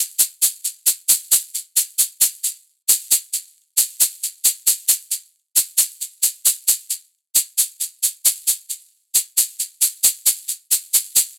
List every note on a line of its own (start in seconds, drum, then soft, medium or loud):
0.19 shaker medium
0.42 shaker medium
0.65 shaker soft
0.87 shaker medium
1.09 shaker medium
1.32 shaker medium
1.55 shaker soft
1.77 shaker medium
1.99 shaker medium
2.21 shaker medium
2.44 shaker soft
2.89 shaker medium
3.11 shaker medium
3.33 shaker soft
3.78 shaker medium
4.01 shaker medium
4.23 shaker soft
4.45 shaker medium
4.67 shaker medium
4.89 shaker medium
5.11 shaker soft
5.56 shaker medium
5.78 shaker medium
6.01 shaker soft
6.23 shaker medium
6.46 shaker medium
6.68 shaker medium
6.90 shaker soft
7.35 shaker medium
7.58 shaker medium
7.81 shaker soft
8.03 shaker medium
8.25 shaker medium
8.48 shaker medium
8.70 shaker soft
9.15 shaker medium
9.38 shaker medium
9.60 shaker soft
9.82 shaker medium
10.04 shaker medium
10.26 shaker medium
10.49 shaker soft
10.72 shaker soft
10.94 shaker medium
11.16 shaker medium